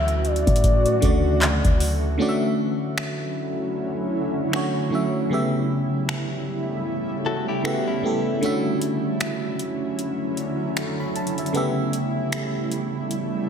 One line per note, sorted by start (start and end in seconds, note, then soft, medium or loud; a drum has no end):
0.00 0.44 D2 loud
0.00 0.12 D3 medium
0.00 2.16 E3 medium
0.00 0.12 A3 medium
0.00 2.16 A3 medium
0.00 0.13 C#4 medium
0.00 0.14 F#4 medium
0.00 2.16 F#4 medium
0.00 0.14 E5 medium
0.00 0.28 E5 loud
0.08 closed hi-hat soft
0.25 1.81 D5 medium
0.25 closed hi-hat soft
0.36 closed hi-hat medium
0.47 1.00 A2 loud
0.47 kick medium
0.47 closed hi-hat medium
0.56 closed hi-hat medium
0.64 kick medium
0.64 closed hi-hat medium
0.86 closed hi-hat medium
1.00 1.62 D2 loud
1.00 1.80 C#3 medium
1.00 1.78 D3 medium
1.00 1.79 A3 medium
1.00 1.80 F#4 medium
1.00 kick medium
1.00 closed hi-hat medium
1.05 1.81 D5 medium
1.42 clap loud
1.42 closed hi-hat medium
1.64 2.18 D2 loud
1.64 kick medium
1.64 closed hi-hat soft
1.80 open hi-hat medium
2.18 3.23 D3 medium
2.18 5.28 D3 medium
2.18 5.28 F#3 medium
2.18 3.24 A3 medium
2.18 5.28 C#4 medium
2.18 3.24 C#4 medium
2.18 5.28 E4 medium
2.18 3.25 F#4 medium
2.22 2.28 D5 medium
2.29 3.29 E5 loud
2.98 finger snap loud
4.52 4.80 D3 medium
4.52 4.81 A3 medium
4.52 4.81 C#4 medium
4.52 4.82 F#4 medium
4.52 finger snap loud
4.56 4.82 C#5 medium
4.90 5.19 D3 medium
4.90 5.20 A3 medium
4.90 5.20 C#4 medium
4.90 5.21 F#4 medium
4.95 5.21 E5 medium
5.30 6.35 C#3 medium
5.30 8.40 C#3 medium
5.30 8.40 G3 medium
5.30 6.36 A3 medium
5.30 8.40 A3 medium
5.30 6.36 B3 medium
5.30 8.40 E4 medium
5.30 6.37 G4 medium
5.34 6.37 E5 medium
6.09 finger snap loud
7.26 7.48 F#4 medium
7.26 7.47 A4 medium
7.48 7.64 E4 medium
7.48 7.64 G4 medium
7.63 7.92 C#3 medium
7.63 7.92 A3 medium
7.63 7.93 B3 medium
7.63 7.86 F#4 medium
7.63 7.93 G4 medium
7.63 finger snap loud
7.67 7.94 E5 medium
7.88 8.40 C#4 medium
7.88 8.40 E4 medium
8.02 8.31 C#3 medium
8.02 8.31 A3 medium
8.02 8.32 B3 medium
8.02 8.32 G4 medium
8.07 8.33 A4 medium
8.41 9.47 D3 medium
8.41 11.52 D3 medium
8.41 11.52 F#3 medium
8.41 9.47 A3 medium
8.41 11.52 C#4 medium
8.41 9.48 C#4 medium
8.41 13.49 E4 medium
8.41 9.48 F#4 medium
8.41 closed hi-hat medium
8.46 9.49 E5 loud
8.81 closed hi-hat medium
9.20 finger snap loud
9.20 closed hi-hat medium
9.59 closed hi-hat medium
9.99 closed hi-hat medium
10.37 closed hi-hat medium
10.77 finger snap loud
10.77 closed hi-hat medium
11.00 11.15 B5 medium
11.16 11.37 A5 medium
11.16 closed hi-hat medium
11.27 closed hi-hat medium
11.38 11.56 E5 medium
11.38 closed hi-hat medium
11.46 closed hi-hat medium
11.53 12.58 C#3 medium
11.53 13.49 C#3 medium
11.53 13.49 G3 medium
11.53 12.59 A3 medium
11.53 13.49 A3 medium
11.53 12.59 B3 medium
11.53 12.60 G4 medium
11.53 closed hi-hat medium
11.57 12.60 E5 loud
11.93 closed hi-hat medium
12.32 finger snap loud
12.32 closed hi-hat medium
12.72 closed hi-hat medium
13.11 closed hi-hat medium